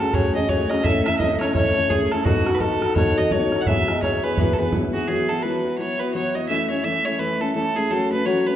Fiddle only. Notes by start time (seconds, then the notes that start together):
Already playing: A4
0.14 C#5
0.35 D#5
0.49 C#5
0.70 D#5
0.84 E5
1.05 E5
1.19 D#5
1.40 C#5
1.54 C#5
1.90 G#4
2.12 A4
2.25 F#4
2.55 B4
2.61 A4
2.96 C#5
3.18 D#5
3.32 C#5
3.61 F#5
3.67 E5
4.03 C#5
4.24 B4
4.34 B4 C#5
4.54 A4
4.59 B4
4.94 F#4
5.08 G#4
5.29 A4
5.43 B4
5.78 C#5
6.00 B4
6.14 C#5
6.35 D#5
6.48 E5
6.70 C#5
6.84 E5
7.05 C#5
7.20 B4
7.41 A4
7.55 A4
7.76 G#4
7.91 A4
8.12 B4
8.26 C#5
8.47 B4